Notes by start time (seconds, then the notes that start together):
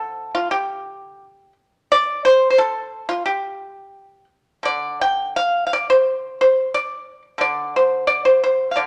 Already playing: D3 A4
0.35 F4
0.51 G4
1.92 D5
2.25 C5
2.50 C5
2.58 A4
3.09 F4
3.26 G4
4.63 D3 D5
5.01 G5
5.36 F5
5.67 F5
5.73 D5
5.90 C5
6.41 C5
6.74 D5
7.38 D3 D5
7.76 C5
8.07 D5
8.25 C5
8.44 C5
8.71 F5
8.76 D3 D5